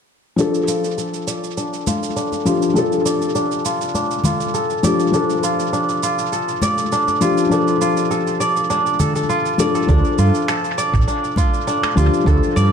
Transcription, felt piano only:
0.36 2.42 F3 medium
0.36 2.43 D4 medium
0.40 2.44 A4 medium
2.45 2.68 F3 medium
2.45 2.68 D4 medium
2.45 2.69 G4 medium
2.74 4.79 F3 medium
2.74 4.80 D4 medium
2.74 4.81 A4 medium
4.83 5.05 F3 medium
4.83 5.06 D4 medium
4.83 5.06 G4 medium
5.12 7.17 F3 medium
5.12 7.18 D4 medium
5.16 7.19 A4 medium
7.21 7.43 F3 medium
7.21 7.43 D4 medium
7.21 7.44 G4 medium
7.49 9.55 F3 medium
7.49 9.56 D4 medium
7.49 9.57 A4 medium
9.58 9.85 F3 medium
9.58 9.85 D4 medium
9.58 9.86 A4 medium
9.87 11.93 F3 medium
9.87 11.93 D4 medium
9.91 11.95 A4 medium
11.96 12.18 F3 medium
11.96 12.18 D4 medium
11.96 12.19 G4 medium
12.24 12.72 F3 medium
12.24 12.72 D4 medium
12.24 12.72 A4 medium

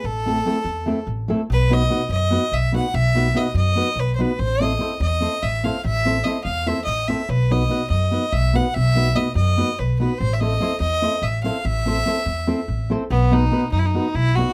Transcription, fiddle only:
0.05 1.07 A4 loud
1.52 1.75 B4 loud
1.73 2.11 D#5 loud
2.12 2.55 D#5 loud
2.54 2.75 E5 medium
2.76 2.96 F#5 medium
2.95 3.39 E5 loud
3.37 3.56 D#5 medium
3.57 4.01 D#5 loud
4.00 4.15 B4 loud
4.16 4.22 C5 medium
4.21 4.41 B4 medium
4.39 4.63 C5 loud
4.62 5.00 D#5 medium
5.02 5.44 D#5 loud
5.43 5.66 E5 medium
5.64 5.84 F5 medium
5.85 6.25 E5 loud
6.24 6.43 D#5 medium
6.44 6.69 F5 medium
6.67 6.84 E5 medium
6.85 7.09 D#5 loud
7.08 7.31 E5 medium
7.30 7.53 B4 medium
7.51 7.89 D#5 medium
7.90 8.34 D#5 medium
8.33 8.57 E5 loud
8.55 8.76 F#5 medium
8.75 9.17 E5 loud
9.16 9.35 D#5 loud
9.35 9.80 D#5 loud
9.79 9.99 B4 medium
9.99 10.20 B4 medium
10.18 10.35 C5 loud
10.33 10.42 E5 medium
10.40 10.80 D#5 medium
10.80 11.24 D#5 loud
11.23 11.43 E5 medium
11.43 11.67 F5 medium
11.65 12.91 E5 loud
13.11 13.34 B3 loud
13.33 13.71 D#4 loud
13.72 13.81 D#4 medium
13.79 13.87 E4 medium
13.86 14.16 D#4 medium
14.15 14.37 E4 loud
14.35 14.53 F#4 medium

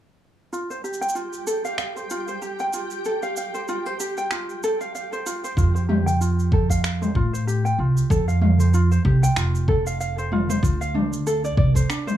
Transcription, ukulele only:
0.53 0.68 F4 medium
0.70 0.83 C5 medium
0.84 1.01 G4 medium
1.01 1.14 G5 medium
1.15 1.46 F4 medium
1.47 1.63 A4 medium
1.65 1.77 F5 medium
1.78 1.94 F5 medium
1.96 2.09 C5 medium
2.11 2.26 F4 medium
2.28 2.41 C5 medium
2.42 2.59 G4 medium
2.60 2.72 G5 medium
2.73 3.04 F4 medium
3.06 3.21 A4 medium
3.23 3.35 F5 medium
3.37 3.53 F5 medium
3.54 3.67 C5 medium
3.69 3.84 F4 loud
3.86 3.99 C5 medium
4.00 4.17 G4 medium
4.18 4.30 G5 medium
4.32 4.62 F4 medium
4.64 4.79 A4 loud
4.81 4.93 F5 medium
4.95 5.11 F5 medium
5.13 5.25 C5 medium
5.26 5.42 F4 medium
5.44 5.57 C5 medium
5.57 5.73 F4 medium
5.75 5.88 C5 medium
5.89 6.06 G4 medium
6.06 6.19 G5 medium
6.21 6.51 F4 medium
6.53 6.69 A4 medium
6.70 6.83 F5 medium
6.84 7.00 F5 medium
7.02 7.14 C5 medium
7.16 7.32 F4 medium
7.33 7.46 C5 medium
7.47 7.64 G4 medium
7.65 7.77 G5 medium
7.79 8.09 F4 medium
8.11 8.26 A4 medium
8.28 8.40 F5 medium
8.42 8.58 F5 medium
8.60 8.72 C5 medium
8.74 8.90 F4 medium
8.91 9.04 C5 medium
9.05 9.22 G4 medium
9.23 9.35 G5 medium
9.37 9.67 F4 medium
9.68 9.84 A4 medium
9.87 9.99 F5 medium
10.00 10.16 F5 medium
10.18 10.30 C5 medium
10.32 10.48 F4 medium
10.50 10.62 C5 medium
10.63 10.80 F4 medium
10.81 10.93 F5 medium
10.95 11.25 D4 medium
11.27 11.42 A4 medium
11.44 11.57 D5 medium
11.58 11.74 D5 medium
11.76 11.88 C5 medium
11.89 12.05 D4 loud
12.07 12.17 C5 medium

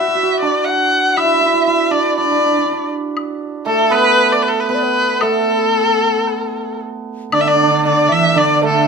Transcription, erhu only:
0.00 0.40 E5 medium
0.40 0.66 D5 medium
0.64 1.19 F#5 medium
1.17 1.66 E5 medium
1.67 1.93 E5 medium
1.92 2.17 D5 medium
2.18 2.89 D5 medium
3.67 3.93 A4 medium
3.92 4.34 B4 loud
4.32 4.44 D5 medium
4.42 4.50 B4 medium
4.48 4.62 A4 medium
4.60 4.68 B4 medium
4.68 5.23 B4 medium
5.21 6.81 A4 medium
7.33 7.43 D5 medium
7.41 7.49 E5 medium
7.48 7.85 D5 medium
7.87 8.14 D5 medium
8.12 8.40 E5 medium
8.38 8.63 D5 medium
8.67 8.88 A4 medium

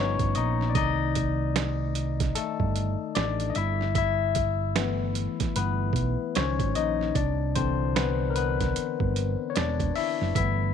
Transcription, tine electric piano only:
0.00 0.71 F3 medium
0.00 0.72 B3 medium
0.00 0.33 C#4 medium
0.00 0.36 D#4 medium
0.00 0.36 C#5 loud
0.35 0.68 D#4 medium
0.35 0.71 D#5 medium
0.70 0.75 D5 medium
0.75 1.91 D#3 medium
0.75 1.92 A3 soft
0.75 2.32 D#4 medium
0.75 1.92 D5 medium
0.75 2.40 D#5 loud
2.35 3.12 A3 medium
2.35 3.18 A4 medium
3.15 3.48 D4 medium
3.15 3.51 D5 loud
3.50 3.55 D#5 medium
3.56 3.94 E4 medium
3.56 3.95 E5 loud
3.96 5.52 E4 medium
3.96 5.51 E5 loud
4.76 5.33 E3 medium
4.76 5.33 A3 soft
4.76 5.33 B3 medium
5.56 6.32 B3 medium
5.56 6.32 B4 medium
6.36 6.92 D#3 medium
6.36 6.93 F3 soft
6.36 6.74 C#4 medium
6.36 6.93 C5 medium
6.36 6.77 C#5 medium
6.76 7.14 D#4 medium
6.76 7.17 D#5 medium
7.15 7.53 D4 medium
7.15 7.52 D5 medium
7.55 8.72 D3 medium
7.55 8.72 E3 soft
7.55 7.94 C4 medium
7.55 8.72 D4 medium
7.55 7.96 C5 medium
7.96 8.29 B3 medium
7.96 8.31 B4 medium
8.30 8.35 A#4 medium
8.36 9.47 B3 medium
8.36 9.53 B4 medium
9.50 9.55 C#5 medium
9.55 9.94 D4 medium
9.55 9.96 D5 medium
9.96 10.15 E4 medium
9.96 10.13 E5 loud
10.36 10.74 E3 medium
10.36 10.74 A3 soft
10.36 10.74 B3 medium
10.36 10.74 E4 medium
10.36 10.74 E5 medium

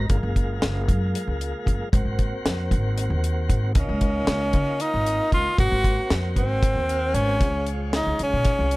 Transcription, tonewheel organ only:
0.09 1.89 G#3 medium
0.09 1.89 A#3 medium
0.09 1.89 F4 medium
1.92 3.72 A#3 medium
1.92 3.73 C4 medium
1.92 3.73 F#4 medium
3.76 5.55 A#3 medium
3.76 5.56 D#4 medium
3.76 5.56 F4 medium
5.59 7.38 A#3 medium
5.59 7.38 C4 medium
5.59 7.39 F#4 medium
6.90 7.14 F5 medium
7.15 7.40 G#5 medium
7.40 8.77 G#3 medium
7.40 8.77 C#4 soft
7.40 8.77 F4 medium

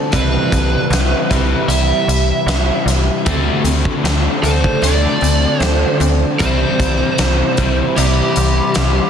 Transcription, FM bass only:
0.13 0.37 C2 medium
0.53 0.76 C2 medium
0.90 1.14 C2 medium
1.31 1.55 C2 loud
1.68 1.92 C2 medium
2.08 2.32 C2 medium
2.46 2.71 C2 medium
2.86 3.10 C2 medium
3.26 3.50 D2 medium
3.64 3.89 D2 medium
4.04 4.28 D2 medium
4.43 4.67 D2 medium
4.82 5.07 D2 medium
5.22 5.46 D2 medium
5.60 5.85 D2 loud
6.00 6.24 D2 loud
6.41 6.65 C2 loud
6.79 7.03 C2 medium
7.19 7.43 C2 loud
7.58 7.82 C2 loud
7.97 8.21 C2 loud
8.37 8.61 C2 medium
8.77 9.00 C2 medium

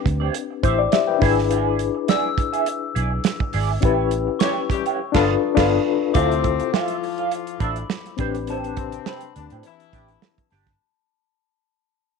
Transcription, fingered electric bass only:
0.06 0.28 D2 loud
0.64 0.86 A1 medium
1.22 1.88 G#1 medium
2.96 3.18 B1 medium
3.54 3.76 G#1 medium
3.83 4.27 A1 loud
5.15 5.34 G1 medium
5.57 5.77 G1 medium
6.15 6.59 D2 loud
7.60 7.83 A1 medium
8.19 8.97 A1 loud
9.36 9.48 D2 medium
9.52 9.61 A2 medium
9.93 10.15 A1 medium
10.52 10.74 G1 medium

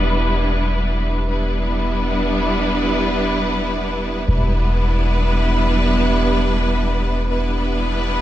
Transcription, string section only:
0.00 1.27 G3 medium
0.00 1.27 B3 medium
0.00 1.26 D4 medium
0.00 1.27 E4 medium
0.00 1.27 B4 medium
1.28 4.26 G3 medium
1.28 4.26 B3 medium
1.28 4.26 D4 medium
1.28 4.26 E4 medium
1.28 4.26 B4 medium
4.28 7.27 G3 medium
4.28 7.26 B3 medium
4.28 7.26 D4 medium
4.28 7.26 E4 medium
4.28 7.26 B4 medium
7.28 8.21 G3 medium
7.28 8.21 B3 medium
7.28 8.21 D4 medium
7.28 8.21 E4 medium
7.28 8.21 B4 medium

